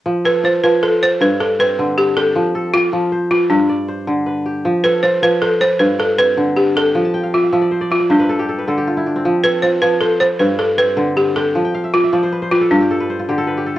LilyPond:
<<
  \new Staff \with { instrumentName = "Balafon" } { \time 12/8 \key f \lydian \tempo 4. = 104 r8 b'8 c''8 b'8 a'8 c''8 b'8 a'8 b'4 g'8 a'8~ | a'4 f'4. f'8 d'2~ d'8 r8 | r8 b'8 c''8 b'8 a'8 c''8 b'8 a'8 b'4 g'8 a'8~ | a'4 f'4. f'8 d'2~ d'8 r8 |
r8 b'8 c''8 b'8 a'8 c''8 b'8 a'8 b'4 g'8 a'8~ | a'4 f'4. f'8 d'2~ d'8 r8 | }
  \new Staff \with { instrumentName = "Kora" } { \time 12/8 \key f \lydian << { r8 a'8 f'4 c''4. d''8 c'4 b'8 g'8~ | g'8 a'8 f'4 c''8 b'4 d''8 c''4 b'8 g'8~ | g'8 a'8 f'4 c''8 b'4 d''8 c'4 b'8 g'8~ | g'8 r1 r4. |
r8 a'8 f'4 c''8 b'4 d''8 c'4 b'8 g'8~ | g'8 r1 r4. | } \\ { r1. | r1. | r1. | r16 a''16 g''16 f''16 e''16 f''16 e''16 d''16 c''16 d''16 e''16 d''16 c''16 b'16 a'16 g'16 a'16 b'16 a'16 g'16 f'16 e'16 d'16 c'16~ |
c'16 r1 r4. r16 | r16 g''16 f''16 e''16 d''16 e''16 d''16 c''16 b'16 c''16 b'16 a'16 f'16 g'16 a'16 b'16 c''16 f'16 g'16 a'16 b'16 g'16 a'8 | } >> }
  \new Staff \with { instrumentName = "Kora" } { \clef bass \time 12/8 \key f \lydian f4 r8 f4 r8 g,4 r8 d4 r8 | f4 r8 f4 r8 g,4 r8 d4 r8 | f4 r8 f4 r8 g,4 r8 d4 r8 | f4 r8 f4 r8 g,4 r8 d4 r8 |
f4 r8 f4 r8 g,4 r8 d4 r8 | f4 r8 f4 r8 g,4 r8 d4 r8 | }
>>